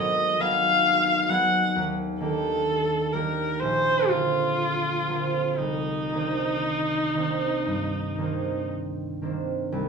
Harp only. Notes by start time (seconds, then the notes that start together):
Already playing: G#1 F#3 B3
0.39 F#3 B3 D#4 G#4
1.29 F#3 B3 D#4 G#4
1.76 D#2
2.20 D#3 A#3 D4 G4
3.14 D#3 A#3 D4 G4
3.62 A#1
4.10 D3 A#3 C4 F4
5.09 D3 A#3 C4 F4
5.59 C2
6.11 D#3 A#3 C4 D4
7.15 D#3 A#3 C4 D4
7.66 G2
8.18 D#3 A#3 C4 D4
9.22 D#3 A#3 C4 D4
9.72 C2